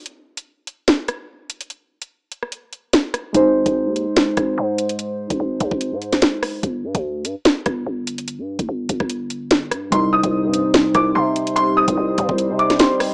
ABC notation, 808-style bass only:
X:1
M:4/4
L:1/16
Q:1/4=146
K:Cm
V:1 name="808-style bass" clef=bass
z16 | z16 | A,,,3 A,,,2 E,,2 z3 A,,,2 A,,4- | A,,3 A,,, A,,,2 E,, A,,,2 A,,3 z4 |
G,,,2 G,, D,,3 G,, z3 G,,,2 G,,,4- | G,,, G,,2 F,,, G,,,2 G,,, G,,,6- G,,, G,,2 | C,,3 C,,2 G,,2 z3 C,,2 C,4- | C,3 C,, C,,2 G,, C,,2 C,3 z4 |]